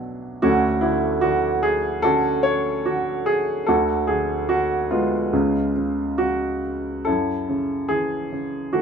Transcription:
Already playing: B1 B2 F#3 A3 D4
0.42 D2 D3 A3 C#4 F#4
0.81 D3 E4
1.21 D3 F#4
1.63 G#4
2.02 D3 C#4 F#4 A4
2.43 C#5
2.86 D3 F#4
3.26 G#4
3.67 D2 D3 F#4 A4
4.07 D3 G#4
4.49 D3 F#4
4.91 G#3 B3 F4
5.33 C#2 C#3
5.76 C#3
6.18 C#3 F#4
7.05 F#2 E4 A4
7.49 C#3
7.89 E3 G#4
8.32 C#3
8.73 E3 A3 F#4

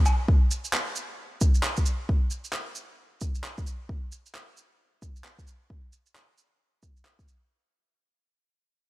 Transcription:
0.06 low woodblock, shaker
0.28 kick
0.51 shaker
0.65 shaker
0.73 clap
0.96 shaker
1.41 kick, shaker
1.55 shaker
1.63 clap
1.77 kick, shaker
1.86 shaker
2.09 kick
2.31 shaker
2.45 shaker
2.53 clap
2.75 shaker
3.21 kick, shaker
3.35 shaker
3.44 clap
3.58 kick, shaker
3.67 shaker
3.89 kick
4.12 shaker
4.26 shaker
4.35 clap
4.57 shaker
5.02 kick, shaker
5.16 shaker
5.24 clap
5.39 kick, shaker
5.47 shaker
5.70 kick
5.93 shaker
6.06 shaker
6.15 clap
6.38 shaker
6.83 kick, shaker
6.97 shaker
7.05 clap
7.19 kick, shaker
7.28 shaker

